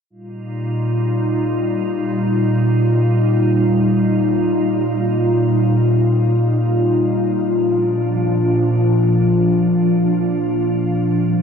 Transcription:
ambient pad
0.10 A#2 G3 D#4 F4
7.49 A#2 F3 D4
11.18 A2 G3 C4 F4

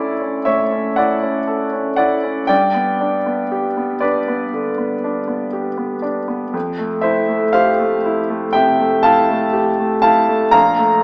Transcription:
grand piano
Already playing: D2 C#4 E4 A4 C#5 D5
0.21 C#4
0.45 A2 C#5 E5
0.72 C#4
0.96 E4 D5 F#5
1.23 C#4
1.47 A4
1.73 C#4
1.96 E4 D5 F#5
2.23 C#4
2.47 G2 D5 G5
2.74 B3
3.01 D4
3.26 B3
3.52 G4
3.77 B3
4.00 D4 B4 D5
4.28 B3
4.54 D3
4.78 B3
5.04 D4
5.27 B3
5.53 G4
5.77 B3
6.02 D4
6.28 B3
6.54 F2
6.78 A3
7.01 E4 C5 E5
7.28 A3
7.53 G4 C5 F5
7.80 A3
8.05 E4
8.30 A3
8.53 C3 E5 G5
8.79 A3
9.03 E4 F5 A5
9.30 A3
9.53 G4
9.78 A3
10.02 E4 F5 A5
10.29 A3
10.51 A#1 F5 A#5
10.78 A3

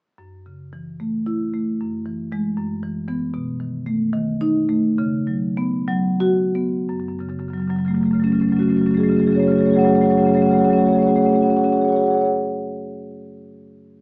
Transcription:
marimba
0.18 F#2
0.46 C#3
0.73 E3
1.00 A3
1.26 E4
1.54 A3
1.81 F#2
2.06 E3
2.32 E3 G#3
2.57 F#2
2.83 E3
3.08 E3 B3
3.34 B2
3.60 D#3
3.86 A3
4.13 D#3
4.41 D#4
4.69 A3
4.98 C#3
5.27 F#3
5.57 B3
5.88 F#3
6.20 F#4
6.55 B3
6.89 F#2
7.00 F#2
7.09 F#2
7.19 F#2 C#3
7.29 F#2 C#3
7.39 F#2 C#3
7.48 F#2 C#3
7.54 F#3
7.58 F#2 C#3
7.62 F#3
7.68 F#2 C#3 F#3
7.76 C#3 F#3
7.80 F#2
7.85 C#3 F#3 A3
7.91 F#2 C#3
7.95 F#3 A3
8.01 F#2 C#3 F#3
8.06 A3
8.11 F#2 C#3 F#3 A3
8.20 F#2 C#3 F#3 A3
8.24 F#3 C#4
8.32 F#2 C#3 F#3 A3 C#4
8.40 F#2 C#3 F#3 A3 C#4
8.48 F#2 F#3 A3 C#4
8.53 C#3 C#4
8.59 F#2 C#3 F#3 A3 C#4 F#4
8.67 C#3 F#3 A3 C#4 F#4
8.72 F#2 F#4
8.77 F#3 A3 C#4
8.81 F#2 C#3 F#4
8.86 F#3 A3 C#4
8.91 F#2 C#3 A3 C#4 F#4
8.95 F#3 G#4
8.99 F#2 C#3 C#4 F#4
9.03 F#3 A3 F#4 G#4
9.09 F#2 C#3 F#3 A3 C#4 G#4
9.15 C#3 C#4 F#4
9.19 F#2 F#3 A3 G#4
9.23 C#4 F#4 G#4
9.28 F#2 C#3 F#3 A3 F#4
9.32 F#3 C#4 G#4 C#5
9.38 F#2 C#3 A3 C#4 F#4
9.42 F#3 G#4 C#5
9.47 F#2 C#3 A3 C#4 F#4 G#4
9.51 F#3 C#5
9.55 C#3 A3 C#4 F#4 G#4 C#5
9.60 F#2 F#3 C#4 F#4
9.65 C#3 A3 G#4 C#5
9.69 F#2 F#3 C#4 F#4 C#5
9.73 C#3 F#3 A3 G#4 F#5
9.79 F#2 C#4 F#4 G#4 C#5 F#5
9.84 C#3 F#3 A3 C#4 F#4 C#5
9.89 F#2 G#4 F#5
9.93 C#3 F#3 A3 C#4 F#4 G#4 C#5 F#5
10.00 F#2 F#3 A3 C#4 F#4 C#5 F#5
10.05 C#3 G#4 F#5
10.09 F#2 C#3 F#3 A3 C#4 F#4 G#4 C#5
10.14 F#3 A3 C#4 C#5 F#5
10.19 F#2 C#3 F#4 G#4 F#5
10.25 F#3 A3 C#4 F#4 G#4 C#5 F#5
10.30 F#2 C#3 C#5
10.34 F#3 A3 C#4 F#4 G#4 F#5
10.40 C#3 F#3 C#4 G#4 C#5 F#5
10.45 A3 C#4 F#4 F#5
10.49 C#3 F#3 F#4 G#4 C#5 F#5
10.54 A3 C#4
10.58 C#3 F#3 F#4 G#4 C#5 F#5
10.62 A3 C#4 G#4 C#5 F#5
10.68 C#3 F#3 A3 F#4 G#4 F#5
10.73 C#4 F#4 C#5
10.77 F#3 A3 G#4 C#5 F#5
10.81 C#4 F#4 F#5
10.86 F#3 A3 C#4 G#4 C#5
10.90 F#4 G#4 C#5 F#5
10.95 F#3 A3 C#4 F#5
11.00 C#4 F#4 G#4 C#5
11.04 A3 F#4 G#4 F#5
11.09 C#4 C#5 F#5
11.15 A3 C#4 F#4 G#4 C#5 F#5
11.22 A3 C#4 F#4 G#4 C#5 F#5
11.29 F#4 G#4 C#5 F#5
11.34 A3 C#4 G#4 F#5
11.38 C#4 F#4 C#5
11.43 G#4 C#5 F#5
11.49 C#4 F#4 G#4 F#5
11.53 C#4 F#4 C#5 F#5
11.59 G#4 C#5
11.63 C#4 F#4 G#4 F#5
11.69 C#4 F#4 C#5 F#5
11.73 G#4 F#5
11.78 F#4 G#4 C#5
11.83 C#5 F#5
11.88 F#4 G#4 F#5
11.92 C#5 F#5
11.96 F#4 G#4 C#5
12.01 F#4 G#4 F#5
12.06 C#5 F#5
12.11 G#4 C#5 F#5
12.18 G#4 C#5 F#5
12.25 G#4 F#5

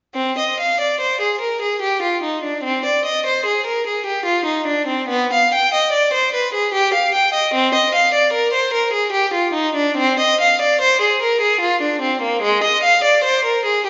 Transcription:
violin
0.14 C4
0.38 D#5
0.60 F5
0.81 D5
1.01 C5
1.21 G#4
1.41 A#4
1.62 G#4
1.82 G4
2.02 F4
2.23 D#4
2.44 D4
2.64 C4
2.86 D5
3.05 D#5
3.26 C5
3.45 G#4
3.67 A#4
3.87 G#4
4.06 G4
4.25 F4
4.45 D#4
4.66 D4
4.87 C4
5.09 B3
5.33 F5
5.54 G5
5.74 D#5
5.93 D5
6.13 C5
6.34 B4
6.54 G#4
6.74 G4
6.94 F5
7.15 G5
7.34 D#5
7.54 C4
7.75 D#5
7.95 F5
8.14 D5
8.33 A#4
8.53 C5
8.74 A#4
8.93 G#4
9.13 G4
9.34 F4
9.53 D#4
9.75 D4
9.97 C4
10.20 D#5
10.41 F5
10.61 D5
10.81 C5
11.01 G#4
11.22 A#4
11.41 G#4
11.61 F4
11.82 D4
12.01 C4
12.22 A#3
12.42 G#3
12.64 D#5
12.83 F5
13.04 D5
13.24 C5
13.45 A#4
13.65 G#4

